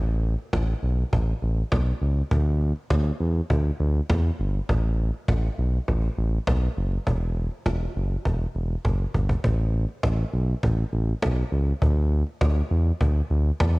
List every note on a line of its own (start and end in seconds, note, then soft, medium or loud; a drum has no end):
0.00 0.35 A1 loud
0.24 cajon slap soft
0.38 cajon slap soft
0.53 0.74 A1 loud
0.53 cajon bass loud
0.53 cajon slap loud
0.83 1.04 B1 medium
0.83 cajon slap soft
0.98 cajon slap soft
1.13 1.33 A1 loud
1.13 cajon bass loud
1.42 1.63 A1 loud
1.42 cajon slap soft
1.57 cajon slap soft
1.72 1.93 B1 medium
1.72 cajon bass loud
1.72 cajon slap loud
2.02 2.22 C#2 medium
2.16 cajon slap soft
2.31 2.73 D2 loud
2.31 cajon bass loud
2.61 cajon slap soft
2.76 cajon slap soft
2.90 3.11 D2 loud
2.90 cajon bass loud
2.90 cajon slap loud
3.20 3.41 E2 medium
3.20 cajon slap soft
3.35 cajon slap soft
3.50 3.71 D2 loud
3.50 cajon bass loud
3.80 4.01 D2 loud
3.80 cajon slap soft
3.95 cajon slap soft
4.10 4.30 E2 loud
4.10 cajon bass loud
4.10 cajon slap loud
4.39 4.60 G1 medium
4.54 cajon slap soft
4.69 5.11 A1 loud
4.69 cajon bass loud
4.99 cajon slap soft
5.14 cajon slap soft
5.28 5.49 A1 loud
5.28 cajon bass loud
5.28 cajon slap loud
5.58 5.79 B1 medium
5.58 cajon slap soft
5.73 cajon slap soft
5.88 6.09 A1 loud
5.88 cajon bass loud
6.17 6.38 A1 loud
6.17 cajon slap soft
6.33 cajon slap soft
6.47 6.68 B1 loud
6.47 cajon bass loud
6.47 cajon slap loud
6.77 6.98 F#1 medium
6.92 cajon slap soft
7.07 7.48 E1 loud
7.07 cajon bass loud
7.36 cajon slap soft
7.51 cajon slap soft
7.66 7.87 E1 loud
7.66 cajon bass loud
7.66 cajon slap loud
7.96 8.17 F#1 loud
8.11 cajon slap soft
8.25 8.46 E1 loud
8.25 cajon bass loud
8.55 8.76 E1 loud
8.55 cajon slap soft
8.70 cajon slap soft
8.85 9.06 F#1 loud
8.85 cajon bass loud
8.85 cajon slap medium
9.14 9.35 G1 loud
9.14 cajon bass medium
9.29 cajon bass loud
9.44 9.86 A1 loud
9.44 cajon bass loud
9.74 cajon slap soft
9.89 cajon slap soft
10.03 10.24 A1 loud
10.03 cajon bass loud
10.03 cajon slap loud
10.33 10.54 B1 loud
10.33 cajon slap soft
10.48 cajon slap soft
10.63 10.84 A1 loud
10.63 cajon bass loud
10.93 11.14 A1 loud
10.93 cajon slap soft
11.08 cajon slap soft
11.22 11.43 B1 medium
11.22 cajon bass loud
11.22 cajon slap loud
11.52 11.73 C#2 medium
11.67 cajon slap soft
11.82 12.23 D2 loud
11.82 cajon bass loud
12.12 cajon slap soft
12.27 cajon slap soft
12.41 12.62 D2 loud
12.41 cajon bass loud
12.41 cajon slap loud
12.71 12.92 E2 medium
12.71 cajon slap soft
12.86 cajon slap soft
13.01 13.22 D2 loud
13.01 cajon bass loud
13.30 13.51 D2 loud
13.30 cajon slap soft
13.45 cajon slap soft
13.60 13.79 E2 loud
13.60 cajon bass loud
13.60 cajon slap loud